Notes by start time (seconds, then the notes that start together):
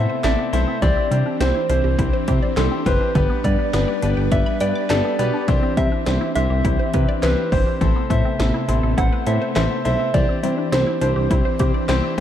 Already playing: C3 A3 B3 C4 E4 A4 C5 E5
0.09 C5
0.24 A1 E3 C4 E4 A4 D5 E5, snare, clap, closed hi-hat
0.39 B3
0.53 B1 A3 C4 E4 A4 C5 E5, closed hi-hat
0.68 C4
0.82 C2 E3 C4 D4 E4 G4 C5 D5, kick, closed hi-hat
0.97 C4
1.11 C3 G3 C4 E4 G4 C5, closed hi-hat
1.26 D4
1.40 C2 C4 E4 G4 C5, snare, closed hi-hat
1.55 E4
1.69 C2 C4 D4 E4 G4 C5, closed hi-hat
1.84 C2 G4
1.99 C2 C4 E4 G4 C5, kick, closed hi-hat
2.13 C5
2.28 C3 C4 E4 G4 C5, kick, closed hi-hat
2.42 D5
2.57 C2 E3 C4 E4 G4 A4 C5, snare, clap, closed hi-hat
2.72 C4
2.86 F#1 G3 C4 E4 G4 B4 C5, kick, closed hi-hat
3.01 D4
3.15 G1 D3 G3 B3 D4 G4 B4, kick, closed hi-hat
3.30 B3
3.44 G2 G3 B3 D4 G4 B4 D5, kick, closed hi-hat
3.59 D4
3.73 G1 B3 D4 G4 B4, snare, closed hi-hat
3.88 D5
4.02 G1 B3 D4 G4 B4, closed hi-hat
4.17 G1 G5
4.32 G1 B3 D4 G4 B4 D5 E5, kick, closed hi-hat
4.46 B5
4.60 G2 B3 D4 G4 B4 D5 G5, closed hi-hat
4.75 D6
4.90 G1 D3 B3 D4 G4 A4 D5, snare, clap, closed hi-hat
5.05 B3
5.19 B1 G3 B3 D4 G4 B4 D5, closed hi-hat
5.34 D4
5.48 C2 E3 C4 E4 G4 C5, kick, closed hi-hat
5.63 C4
5.77 C3 G3 C4 E4 G4 C5 E5, kick, closed hi-hat
5.92 D4
6.06 C2 C4 E4 G4 C5, snare, closed hi-hat
6.21 E4
6.35 C2 C4 D4 E4 G4 C5 E5, closed hi-hat
6.50 C2 G4
6.64 C2 C4 E4 G4 C5, kick, closed hi-hat
6.79 C5
6.94 C3 C4 E4 G4 B4, kick, closed hi-hat
7.09 D5
7.23 C2 E3 C4 E4 G4 B4 C5, snare, clap, closed hi-hat
7.38 C4
7.52 G1 G3 C4 E4 G4 C5, kick, open hi-hat
7.67 D4
7.81 A1 C3 E3 A3 B3 C4 E4 A4 C5, kick, closed hi-hat
7.96 B3
8.10 A2 A3 C4 E4 A4 C5 E5, kick, closed hi-hat
8.25 C4
8.39 A1 B3 C4 E4 A4 C5, snare, closed hi-hat
8.54 E4
8.68 A1 C4 E4 A4 C5, closed hi-hat
8.83 A1 A4
8.97 A1 C4 E4 A4 C5 F#5, kick, closed hi-hat
9.12 B4
9.27 A2 C4 E4 A4 C5 E5, closed hi-hat
9.42 C5
9.56 A1 E3 C4 E4 A4 C5 E5, snare, clap, closed hi-hat
9.71 B3
9.85 B1 A3 C4 E4 A4 C5 E5, closed hi-hat
10.00 C4
10.14 C2 E3 C4 D4 E4 G4 C5 D5, kick, closed hi-hat
10.29 C4
10.43 C3 G3 C4 E4 G4 C5, closed hi-hat
10.58 D4
10.72 C2 C4 E4 G4 C5, snare, closed hi-hat
10.87 E4
11.01 C2 C4 D4 E4 G4 C5, closed hi-hat
11.16 C2 G4
11.31 C2 C4 E4 G4 C5, kick, closed hi-hat
11.45 C5
11.59 C3 C4 E4 G4 C5, kick, closed hi-hat
11.74 D5
11.89 C2 E3 C4 E4 G4 C5, snare, clap, closed hi-hat
12.03 C4